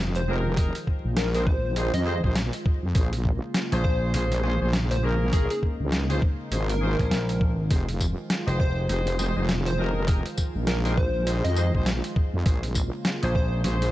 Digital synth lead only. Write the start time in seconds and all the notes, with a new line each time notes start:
0.16 C5
1.17 A#4
1.35 A#4
1.47 C5
1.94 D#5
2.06 D#5
3.84 C5
4.91 C5
5.33 G#4
5.51 G#4
6.69 A#4
8.60 C5
9.67 C5
10.67 A#4
10.85 A#4
10.97 C5
11.44 D#5
11.56 D#5
13.35 C5